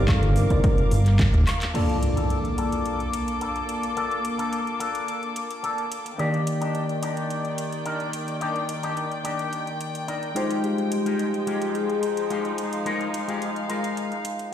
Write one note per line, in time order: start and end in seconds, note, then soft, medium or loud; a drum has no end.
0.00 0.46 G1 medium
0.00 0.47 C4 medium
0.00 0.47 D#4 medium
0.00 0.47 F4 medium
0.00 0.47 A#4 medium
0.00 1.71 A#4 medium
0.00 0.47 D5 medium
0.00 1.71 F5 medium
0.00 1.71 D6 medium
0.08 0.37 A4 loud
0.08 kick loud
0.08 clap loud
0.08 closed hi-hat medium
0.08 high woodblock medium
0.23 closed hi-hat soft
0.36 0.63 A#4 loud
0.36 open hi-hat medium
0.50 0.61 C2 loud
0.50 0.88 C4 medium
0.50 0.88 D#4 medium
0.50 0.88 F4 medium
0.50 0.89 A#4 medium
0.50 0.89 D5 medium
0.50 kick medium
0.50 closed hi-hat medium
0.64 1.15 A#4 loud
0.64 kick loud
0.64 closed hi-hat medium
0.78 0.89 G1 soft
0.78 closed hi-hat soft
0.91 1.29 G1 loud
0.91 open hi-hat loud
1.06 clap soft
1.06 closed hi-hat medium
1.19 kick loud
1.19 clap loud
1.19 closed hi-hat medium
1.34 1.44 D#2 loud
1.34 closed hi-hat soft
1.47 clap medium
1.47 open hi-hat medium
1.47 high woodblock medium
1.62 clap loud
1.62 closed hi-hat medium
1.74 6.16 A#3 medium
1.74 1.96 A#3 loud
1.74 6.15 A#3 medium
1.74 6.16 D4 medium
1.74 1.96 D4 medium
1.74 6.16 F4 medium
1.74 6.15 A4 medium
1.74 1.96 A4 loud
1.74 6.16 A4 medium
1.74 6.17 D5 medium
1.74 6.15 D6 medium
1.74 closed hi-hat soft
1.74 crash medium
1.74 impact medium
1.89 closed hi-hat soft
2.03 closed hi-hat medium
2.16 2.37 A#3 medium
2.16 2.38 D4 medium
2.16 2.38 A4 medium
2.16 closed hi-hat soft
2.30 closed hi-hat soft
2.45 closed hi-hat soft
2.58 3.00 A#3 medium
2.58 3.00 D4 medium
2.58 3.01 A4 medium
2.58 closed hi-hat medium
2.72 closed hi-hat soft
2.85 closed hi-hat soft
3.00 closed hi-hat soft
3.13 closed hi-hat medium
3.28 closed hi-hat soft
3.41 3.62 A#3 medium
3.41 3.63 D4 medium
3.41 3.63 A4 medium
3.41 closed hi-hat soft
3.56 closed hi-hat soft
3.69 closed hi-hat medium
3.83 muted clean electric guitar stroke soft
3.83 closed hi-hat soft
3.96 4.18 A#3 loud
3.96 4.18 D4 medium
3.96 4.18 A4 loud
3.96 closed hi-hat soft
4.11 closed hi-hat soft
4.25 closed hi-hat medium
4.38 4.60 A#3 medium
4.38 4.60 D4 medium
4.38 4.60 A4 medium
4.38 closed hi-hat soft
4.53 closed hi-hat soft
4.67 closed hi-hat soft
4.79 5.22 A#3 medium
4.79 5.22 D4 medium
4.79 5.23 A4 medium
4.79 closed hi-hat medium
4.95 closed hi-hat soft
5.08 closed hi-hat soft
5.23 closed hi-hat soft
5.36 closed hi-hat medium
5.51 closed hi-hat soft
5.63 5.85 A#3 medium
5.63 5.85 D4 medium
5.63 5.85 A4 medium
5.63 closed hi-hat soft
5.78 closed hi-hat soft
5.92 closed hi-hat medium
6.05 muted clean electric guitar stroke soft
6.05 closed hi-hat soft
6.18 10.32 D#3 medium
6.18 10.33 D#3 medium
6.18 10.32 A#3 medium
6.18 6.40 D4 loud
6.18 6.40 D#4 medium
6.18 6.40 G4 loud
6.18 10.33 G4 medium
6.18 10.32 D5 medium
6.18 10.33 D5 medium
6.18 12.54 G5 medium
6.18 closed hi-hat soft
6.34 closed hi-hat soft
6.47 closed hi-hat medium
6.61 6.82 D4 medium
6.61 6.82 D#4 medium
6.61 6.82 G4 medium
6.61 closed hi-hat soft
6.75 closed hi-hat soft
6.89 closed hi-hat soft
7.02 7.45 D4 medium
7.02 7.45 D#4 medium
7.02 7.45 G4 medium
7.02 closed hi-hat medium
7.17 closed hi-hat soft
7.30 closed hi-hat soft
7.45 closed hi-hat soft
7.58 closed hi-hat medium
7.72 closed hi-hat soft
7.85 8.07 D4 medium
7.85 8.07 D#4 medium
7.85 8.07 A#4 medium
7.85 closed hi-hat soft
8.00 closed hi-hat soft
8.13 closed hi-hat medium
8.28 muted clean electric guitar stroke soft
8.28 closed hi-hat soft
8.41 8.62 D4 loud
8.41 8.63 D#4 medium
8.41 8.63 G4 loud
8.41 closed hi-hat soft
8.56 closed hi-hat soft
8.69 closed hi-hat medium
8.83 9.04 D4 medium
8.83 9.04 D#4 medium
8.83 9.04 G4 medium
8.83 closed hi-hat soft
8.97 closed hi-hat soft
9.11 closed hi-hat soft
9.24 9.67 D4 medium
9.24 9.67 D#4 medium
9.24 9.67 G4 medium
9.24 closed hi-hat medium
9.39 closed hi-hat soft
9.53 closed hi-hat soft
9.67 closed hi-hat soft
9.81 closed hi-hat medium
9.95 closed hi-hat soft
10.07 10.29 D4 medium
10.07 10.29 D#4 medium
10.07 10.29 A#4 medium
10.07 closed hi-hat soft
10.23 closed hi-hat soft
10.35 14.54 F3 medium
10.35 14.54 G#3 medium
10.35 10.91 G#3 medium
10.35 14.54 G#3 medium
10.35 14.54 D#4 medium
10.35 10.91 D#4 medium
10.35 14.54 D#4 medium
10.35 10.91 F4 medium
10.35 14.54 F4 medium
10.35 10.92 G4 medium
10.35 14.54 C5 medium
10.35 14.54 G5 medium
10.35 closed hi-hat medium
10.51 closed hi-hat soft
10.64 11.76 G4 loud
10.64 closed hi-hat soft
10.78 closed hi-hat soft
10.92 closed hi-hat medium
11.05 11.26 G#3 medium
11.05 11.26 D#4 medium
11.05 11.27 F4 medium
11.05 11.27 G4 medium
11.05 closed hi-hat soft
11.19 closed hi-hat soft
11.34 closed hi-hat soft
11.47 11.89 G#3 medium
11.47 11.89 D#4 medium
11.47 11.89 F4 medium
11.47 11.89 G4 medium
11.47 closed hi-hat medium
11.62 closed hi-hat soft
11.75 12.58 G#4 loud
11.75 closed hi-hat soft
11.90 closed hi-hat soft
12.03 closed hi-hat medium
12.17 closed hi-hat soft
12.30 12.51 G#3 medium
12.30 12.51 D#4 medium
12.30 12.52 F4 medium
12.30 12.52 G4 medium
12.30 closed hi-hat soft
12.45 closed hi-hat soft
12.58 14.54 F5 medium
12.58 closed hi-hat medium
12.72 muted clean electric guitar stroke soft
12.72 closed hi-hat soft
12.85 13.07 G#3 loud
12.85 13.07 D#4 medium
12.85 13.07 F4 medium
12.85 13.07 A#4 loud
12.85 closed hi-hat soft
13.01 closed hi-hat soft
13.14 closed hi-hat medium
13.28 13.49 G#3 medium
13.28 13.49 D#4 medium
13.28 13.49 F4 medium
13.28 13.49 G4 medium
13.28 closed hi-hat soft
13.42 closed hi-hat soft
13.56 closed hi-hat soft
13.69 14.11 G#3 medium
13.69 14.11 D#4 medium
13.69 14.12 F4 medium
13.69 14.12 A#4 medium
13.69 closed hi-hat medium
13.84 closed hi-hat soft
13.97 closed hi-hat soft
14.12 closed hi-hat soft
14.25 closed hi-hat medium
14.39 closed hi-hat soft